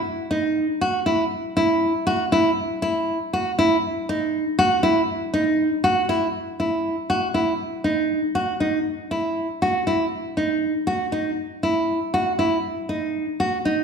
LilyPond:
\new Staff \with { instrumentName = "Nylon-string guitar" } { \time 5/8 \key e \major \tempo 4 = 119 r8 dis'4 fis'8 e'8 | r8 e'4 fis'8 e'8 | r8 e'4 fis'8 e'8 | r8 dis'4 fis'8 e'8 |
r8 dis'4 fis'8 e'8 | r8 e'4 fis'8 e'8 | r8 dis'4 fis'8 dis'8 | r8 e'4 fis'8 e'8 |
r8 dis'4 fis'8 dis'8 | r8 e'4 fis'8 e'8 | r8 dis'4 fis'8 dis'8 | }